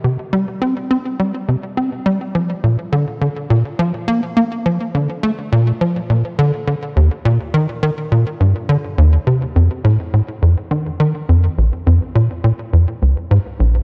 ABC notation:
X:1
M:4/4
L:1/8
Q:1/4=104
K:Fmix
V:1 name="Analog synth bass" clef=bass
C, G, C C G, C, C G, | F, B,, D, D, B,, F, B, B, | F, D, A, B,, F, B,, D, D, | E,, B,, E, E, B,, G,, D, E,, |
C, F,, A,, A,, F,, E, E, F,, | [K:Bbm] B,,, F,, B,, B,, F,, D,, A,, B,,, |]